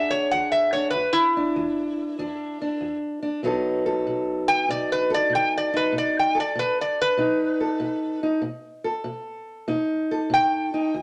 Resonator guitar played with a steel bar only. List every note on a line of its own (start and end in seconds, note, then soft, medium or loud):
0.11 0.30 C#5 medium
0.31 0.51 F#5 medium
0.52 0.71 E5 medium
0.73 0.90 C#5 medium
0.90 1.12 B4 medium
1.13 2.96 E4 loud
4.48 4.67 G5 loud
4.70 4.89 D5 medium
4.92 5.10 B4 medium
5.14 5.32 D5 medium
5.35 5.53 G5 medium
5.58 5.74 D5 medium
5.77 5.94 B4 medium
5.98 6.16 D5 medium
6.19 6.37 G5 medium
6.40 6.57 D5 medium
6.59 6.77 B4 medium
6.81 6.99 D5 medium
7.01 8.21 B4 loud
10.34 11.02 G5 loud